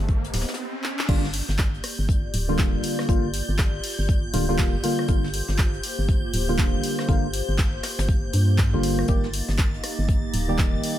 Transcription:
Already playing: analog synth pad A#3 D#4 G4 F5, ambient pad G4 C5 D#5 A5, riser
0.00 fm bass G1
0.08 kick, closed hi-hat
0.24 closed hi-hat
0.34 fm bass D1, snare, closed hi-hat, open hi-hat
0.41 snare, closed hi-hat
0.48 snare, closed hi-hat
0.54 snare, closed hi-hat
0.84 clap
0.99 clap
1.08 fm bass G1, synth stab D3 G3 A#3 F4, analog synth pad A#3 F4 G4 D5, string machine G6, kick, closed hi-hat, crash
1.24 snare
1.33 closed hi-hat, open hi-hat
1.49 fm bass G1, snare
1.59 kick, snare, clap, closed hi-hat
1.74 closed hi-hat
1.83 cross-stick, closed hi-hat, open hi-hat
1.99 fm bass G1
2.09 kick, closed hi-hat
2.34 fm bass D1, closed hi-hat, open hi-hat
2.48 synth stab D3 G3 A#3 F4
2.59 kick, snare, clap, closed hi-hat
2.74 fm bass G1
2.83 closed hi-hat, open hi-hat
2.99 cross-stick, snare
3.08 fm bass G1, synth stab D3 G3 A#3 F4, kick, closed hi-hat
3.34 closed hi-hat, open hi-hat
3.49 fm bass G1
3.59 kick, snare, clap, closed hi-hat
3.83 open hi-hat
3.99 fm bass G1
4.09 kick, closed hi-hat
4.33 fm bass D1, synth stab D3 G3 A#3 F4, closed hi-hat, open hi-hat
4.49 synth stab D3 G3 A#3 F4
4.58 kick, snare, clap, closed hi-hat
4.74 fm bass G1
4.83 synth stab D3 G3 A#3 F4, closed hi-hat, open hi-hat
4.99 cross-stick
5.08 fm bass G1, synth stab D3 G3 A#3 F4, analog synth pad C5, kick, closed hi-hat
5.24 snare
5.33 closed hi-hat, open hi-hat
5.48 fm bass G1, snare
5.58 kick, snare, clap, closed hi-hat
5.74 closed hi-hat
5.83 closed hi-hat, open hi-hat
5.99 fm bass G1
6.09 kick, closed hi-hat
6.33 fm bass D1, closed hi-hat, open hi-hat
6.48 synth stab D3 G3 A#3 F4
6.58 kick, snare, clap, closed hi-hat
6.74 fm bass G1
6.84 closed hi-hat, open hi-hat
6.98 cross-stick, snare
7.08 fm bass G1, synth stab D3 G3 A#3 F4, kick, closed hi-hat
7.33 closed hi-hat, open hi-hat
7.49 fm bass G1
7.58 kick, snare, clap, closed hi-hat
7.83 cross-stick, snare, closed hi-hat, open hi-hat
7.99 fm bass G1, snare, closed hi-hat
8.09 kick, closed hi-hat
8.33 fm bass G2, closed hi-hat, open hi-hat
8.58 kick, snare, clap, closed hi-hat
8.73 fm bass G1, synth stab D3 G3 A#3 F4
8.83 closed hi-hat, open hi-hat
8.99 cross-stick
9.08 fm bass G1, synth stab D#3 G3 A#3 G4, analog synth pad D#4 G4 D#5, string machine A6, kick, closed hi-hat
9.24 snare
9.33 closed hi-hat, open hi-hat
9.48 fm bass G1, snare
9.58 kick, snare, clap, closed hi-hat
9.74 closed hi-hat
9.84 cross-stick, closed hi-hat, open hi-hat
9.99 fm bass G1
10.09 kick, closed hi-hat
10.33 fm bass D1, closed hi-hat, open hi-hat
10.48 synth stab D#3 G3 A#3 G4
10.59 kick, snare, clap, closed hi-hat
10.74 fm bass G1
10.84 closed hi-hat, open hi-hat

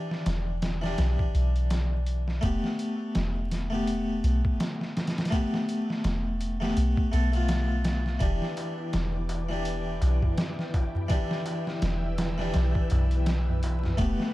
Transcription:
Already playing: harpsichord E3 D4 G4
0.11 snare
0.26 808-style bass E1, snare, closed hi-hat
0.62 snare, closed hi-hat
0.82 harpsichord E3 D4, snare
0.86 harpsichord G4
0.98 808-style bass B1, snare, closed hi-hat
1.19 kick
1.35 808-style bass B1, closed hi-hat
1.56 closed hi-hat
1.70 snare, closed hi-hat
2.06 closed hi-hat
2.28 snare
2.41 808-style bass E1, harpsichord A3 B3 G4, kick, closed hi-hat
2.64 snare
2.79 closed hi-hat
3.15 808-style bass E1, snare, closed hi-hat
3.52 snare, closed hi-hat
3.70 harpsichord A3 B3
3.74 harpsichord G4
3.87 closed hi-hat
4.24 808-style bass B1, closed hi-hat
4.45 kick
4.60 snare, closed hi-hat
4.81 snare
4.97 snare, closed hi-hat
5.07 snare, closed hi-hat
5.18 snare, closed hi-hat
5.25 snare, closed hi-hat
5.30 harpsichord A3 B3 G4, kick, closed hi-hat
5.54 snare
5.69 closed hi-hat
5.90 snare
6.04 808-style bass E1, snare, closed hi-hat
6.41 closed hi-hat
6.60 harpsichord A3 B3 G4, snare
6.77 808-style bass B1, closed hi-hat
6.97 kick
7.12 808-style bass B1, harpsichord A3 B3 A4, closed hi-hat
7.32 harpsichord A3 B3, closed hi-hat
7.36 harpsichord F4
7.49 snare, closed hi-hat
7.84 snare, closed hi-hat
8.06 snare
8.19 808-style bass E1, harpsichord E3 D4 G4, string machine E4 B4 G5 D6, kick, closed hi-hat, darbuka tek
8.42 snare
8.57 closed hi-hat, darbuka tek
8.79 darbuka tek
8.92 808-style bass E1, snare, closed hi-hat, darbuka tek
9.29 closed hi-hat, darbuka tek
9.49 harpsichord E3 D4 G4, darbuka tek
9.65 closed hi-hat, darbuka tek
10.01 808-style bass B1, closed hi-hat, darbuka tek
10.22 kick, darbuka tek, darbuka dum
10.38 snare, closed hi-hat, darbuka tek
10.59 snare
10.74 kick, closed hi-hat, darbuka tek
10.95 darbuka tek, darbuka dum
11.08 harpsichord E3 D4 G4, string machine E6, kick, closed hi-hat, darbuka tek
11.31 snare
11.46 closed hi-hat, darbuka tek
11.67 snare, darbuka tek
11.82 808-style bass E1, snare, closed hi-hat, darbuka tek
12.18 snare, closed hi-hat, darbuka tek
12.38 harpsichord E3 D4 G4, snare, darbuka tek
12.54 808-style bass B1, snare, closed hi-hat
12.75 kick
12.90 808-style bass B1, closed hi-hat, darbuka tek, darbuka dum
13.11 closed hi-hat, darbuka tek
13.26 snare, closed hi-hat, darbuka tek
13.50 darbuka dum
13.63 closed hi-hat, darbuka tek
13.84 snare, darbuka tek, darbuka dum
13.98 808-style bass E1, harpsichord A3 B3 G4, string machine G4 A5 D6, kick, closed hi-hat, darbuka tek
14.20 snare

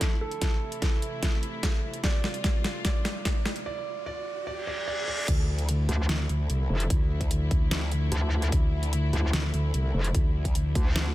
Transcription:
Already playing: string section D3 F3 A3 E4, grand piano A4, riser
0.01 kick, snare, closed hi-hat
0.21 grand piano A4
0.31 closed hi-hat
0.41 string section C3 E3 E4, kick, snare, closed hi-hat
0.72 closed hi-hat
0.82 kick, snare, closed hi-hat
1.02 closed hi-hat
1.23 kick, snare, closed hi-hat
1.43 closed hi-hat
1.63 kick, snare, closed hi-hat
1.94 closed hi-hat
2.04 string section G3 F4, grand piano D5, kick, snare, closed hi-hat
2.24 snare
2.34 closed hi-hat
2.44 kick, snare, closed hi-hat
2.64 snare, closed hi-hat
2.85 grand piano D5, kick, snare, closed hi-hat
3.05 snare, closed hi-hat
3.25 kick, snare, closed hi-hat
3.46 snare
3.56 closed hi-hat
3.66 grand piano D5
4.06 grand piano D5
4.47 grand piano D5, reverse cymbal
4.67 grand piano D5
4.88 grand piano D5
5.08 grand piano D5
5.28 wobble bass D2, string section D3 F3 A3 E4, kick, closed hi-hat, crash
5.59 closed hi-hat
5.69 closed hi-hat
5.89 wobble bass D2, closed hi-hat
6.09 wobble bass D2, snare, closed hi-hat
6.29 wobble bass D2, closed hi-hat
6.50 wobble bass C2, closed hi-hat
6.70 wobble bass F1
6.80 closed hi-hat
6.90 wobble bass D2, kick, closed hi-hat
7.21 kick, closed hi-hat
7.31 closed hi-hat
7.51 wobble bass D2, kick, closed hi-hat
7.71 snare, closed hi-hat
7.92 closed hi-hat
8.12 wobble bass D2, closed hi-hat
8.42 closed hi-hat
8.52 wobble bass D2, kick, closed hi-hat
8.83 closed hi-hat
8.93 closed hi-hat
9.13 wobble bass D2, closed hi-hat
9.33 wobble bass D2, snare, closed hi-hat
9.54 wobble bass D2, closed hi-hat
9.74 wobble bass C2, closed hi-hat
9.94 wobble bass F1
10.04 closed hi-hat
10.15 wobble bass D2, kick, closed hi-hat
10.45 kick, closed hi-hat
10.55 closed hi-hat
10.75 wobble bass D2, kick, closed hi-hat
10.96 snare, closed hi-hat

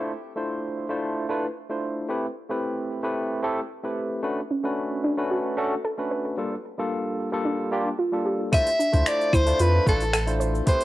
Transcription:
Already playing: tine electric piano A3 D4 E4 F4 C5
0.36 tine electric piano A3 D4 E4 F4 C5
0.89 tine electric piano A3 D4 E4 F4 C5
1.29 tine electric piano A3 D4 E4 F4 B4
1.69 tine electric piano A3 D4 E4 F4 C5
2.09 tine electric piano A3 C4 E4 G4 B4
2.49 tine electric piano A3 C4 E4 G4 B4
3.03 tine electric piano A3 C4 E4 G4 B4
3.42 tine electric piano A3 C4 E4 G4 A4
3.83 tine electric piano A3 C4 E4 G4 B4
4.23 tine electric piano A3 C#4 D4 F#4 B4
4.51 synth pluck C#4
4.64 tine electric piano A3 C#4 D4 F#4 B4
5.04 synth pluck D4
5.17 tine electric piano A3 C#4 D4 F#4 B4
5.31 synth pluck F#4
5.57 tine electric piano A3 C#4 D4 F#4 A4
5.84 synth pluck A4
5.98 tine electric piano A3 C#4 D4 F#4 B4
6.11 synth pluck B4
6.37 tine electric piano G3 A#3 D4 F4 A4
6.78 tine electric piano G3 A#3 D4 F4 A4
7.32 tine electric piano G3 A#3 D4 F4 A4
7.45 synth pluck D4
7.71 tine electric piano G3 A#3 D4 F4 G4
7.99 synth pluck F4
8.12 tine electric piano G3 A#3 D4 F4 A4
8.26 synth pluck G4
8.52 tine electric piano A3 D4 E4 F4 C5, soprano saxophone E5, kick, open hi-hat, cabasa, claves
8.67 open hi-hat
8.79 synth pluck D4, cabasa
8.92 sub bass D2, tine electric piano A3 D4 E4 F4 C5, kick, open hi-hat, cabasa
9.06 soprano saxophone D5, finger snap, open hi-hat, cabasa
9.21 cabasa
9.33 sub bass D2, synth pluck E4, soprano saxophone C5, kick, cabasa, claves
9.46 tine electric piano A3 D4 E4 F4 C5, open hi-hat, cabasa
9.59 sub bass F2, synth pluck F4, soprano saxophone B4, open hi-hat, cabasa
9.86 sub bass A1, tine electric piano A3 D4 E4 F4 B4, soprano saxophone A4, kick, cabasa
10.01 open hi-hat, cabasa
10.13 synth pluck A4, finger snap, open hi-hat, cabasa, claves
10.26 tine electric piano A3 D4 E4 F4 C5, open hi-hat, cabasa
10.40 synth pluck C5, cabasa
10.55 cabasa
10.66 tine electric piano A3 C4 E4 G4 B4, soprano saxophone C5, kick, open hi-hat, cabasa
10.81 open hi-hat

